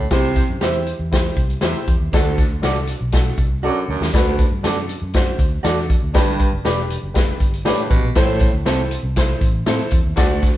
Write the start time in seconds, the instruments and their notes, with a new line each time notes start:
0.10 fingered electric bass C2, baritone saxophone C3, upright piano C3 E4 G4 C5, kick, snare, closed hi-hat
0.36 kick, snare, closed hi-hat
0.49 fingered electric bass F#2
0.61 fingered electric bass E2, upright piano E4 G4 C5, clean electric guitar G4 C5 E5, snare, closed hi-hat
0.87 closed hi-hat
0.99 fingered electric bass E2
1.12 upright piano E4 G4 C5, kick, snare, closed hi-hat
1.37 fingered electric bass C2, kick, closed hi-hat
1.50 closed hi-hat
1.61 fingered electric bass E2, upright piano E4 G4 C5, clean electric guitar G4 C5 E5, snare, closed hi-hat
1.74 closed hi-hat
1.88 fingered electric bass E2, kick, closed hi-hat
2.00 fingered electric bass D#2
2.13 baritone saxophone D2, fingered electric bass D2, upright piano D3 D4 F#4 A4, kick, snare, closed hi-hat
2.38 kick, snare, closed hi-hat
2.49 fingered electric bass D2
2.62 fingered electric bass C2, upright piano D4 F#4 A4, clean electric guitar F#4 A4 D5, snare, closed hi-hat
2.87 closed hi-hat
3.01 fingered electric bass B1
3.12 upright piano D4 F#4 A4, kick, snare, closed hi-hat
3.38 fingered electric bass C2, kick, closed hi-hat
3.63 baritone saxophone F#2, upright piano D4 F#4 A4, clean electric guitar F#4 A4 D5
3.88 fingered electric bass D2, baritone saxophone F#2
4.01 fingered electric bass D#2, snare
4.13 fingered electric bass D2, baritone saxophone D2, upright piano D3 D4 F#4 B4, kick, snare, closed hi-hat
4.39 kick, closed hi-hat
4.51 fingered electric bass G2
4.63 fingered electric bass F#2, upright piano D4 F#4 A4, clean electric guitar F#4 A4 D5, snare, closed hi-hat
4.89 closed hi-hat
5.02 fingered electric bass F#2
5.13 upright piano D4 F#4 C5, kick, snare, closed hi-hat
5.38 fingered electric bass D2, kick, closed hi-hat
5.63 fingered electric bass E2, upright piano D4 F#4 A4, clean electric guitar F#4 A4 D5, snare, closed hi-hat
5.90 kick, closed hi-hat
6.03 fingered electric bass D2
6.14 fingered electric bass G1, baritone saxophone G2, upright piano G2 D4 G4 B4, kick, snare, closed hi-hat
6.39 kick, closed hi-hat
6.53 fingered electric bass F#1
6.64 fingered electric bass E1, upright piano D4 G4 B4, clean electric guitar G4 B4 D5, snare, closed hi-hat
6.90 closed hi-hat
7.03 fingered electric bass F#1
7.14 upright piano D4 G4 B4, kick, snare, closed hi-hat
7.40 fingered electric bass G1, kick, closed hi-hat
7.54 closed hi-hat
7.65 baritone saxophone A2, upright piano D4 G4 B4, clean electric guitar G4 B4 D5, snare, closed hi-hat
7.77 closed hi-hat
7.90 fingered electric bass A1, baritone saxophone B2, kick, closed hi-hat
8.03 fingered electric bass A#1
8.15 fingered electric bass A1, baritone saxophone A2, upright piano A2 E4 A4 C5, kick, snare, closed hi-hat
8.39 kick, snare, closed hi-hat
8.53 fingered electric bass D2
8.65 fingered electric bass C2, clean electric guitar C4 E4 A4, upright piano E4 A4 C5, snare, closed hi-hat
8.91 closed hi-hat
9.03 fingered electric bass C2
9.16 upright piano E4 A4 C5, kick, snare, closed hi-hat
9.41 fingered electric bass A1, kick, closed hi-hat
9.66 fingered electric bass A2, clean electric guitar C4 E4 A4, upright piano E4 A4 C5, snare, closed hi-hat
9.79 closed hi-hat
9.91 fingered electric bass E2, kick, closed hi-hat
10.06 fingered electric bass D#2
10.16 fingered electric bass D2, baritone saxophone D2, upright piano D3 F#4 A4 D5, kick, snare, closed hi-hat
10.42 kick, snare, closed hi-hat